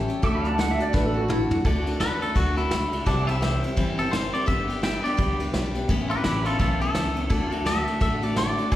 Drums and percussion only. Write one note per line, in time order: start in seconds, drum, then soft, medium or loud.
0.09 closed hi-hat medium
0.23 kick loud
0.23 closed hi-hat medium
0.45 closed hi-hat medium
0.59 snare loud
0.59 closed hi-hat medium
0.80 closed hi-hat medium
0.94 kick loud
0.94 snare medium
1.30 mid tom loud
1.51 floor tom medium
1.65 kick loud
1.65 ride medium
1.87 ride medium
2.00 snare loud
2.00 ride medium
2.22 ride medium
2.36 kick loud
2.36 ride medium
2.57 ride medium
2.71 snare loud
2.71 ride medium
2.93 ride medium
3.07 kick loud
3.07 ride medium
3.28 ride medium
3.42 snare loud
3.42 ride medium
3.63 ride medium
3.77 kick medium
3.77 ride medium
3.99 ride medium
4.13 snare loud
4.13 ride medium
4.34 ride medium
4.48 kick loud
4.48 ride medium
4.70 ride medium
4.83 snare loud
4.83 ride medium
5.05 ride medium
5.19 kick loud
5.19 ride medium
5.40 ride medium
5.54 snare loud
5.54 ride medium
5.75 ride medium
5.89 kick loud
5.89 ride medium
6.10 ride medium
6.24 snare loud
6.24 ride medium
6.45 ride medium
6.59 kick loud
6.59 ride medium
6.81 ride medium
6.95 snare loud
6.95 ride medium
7.16 ride medium
7.30 kick loud
7.30 ride medium
7.52 ride medium
7.66 snare loud
7.66 ride loud
7.87 ride medium
8.01 kick loud
8.01 ride medium
8.23 ride medium
8.36 snare loud
8.36 ride medium
8.58 ride medium
8.72 kick loud
8.72 ride medium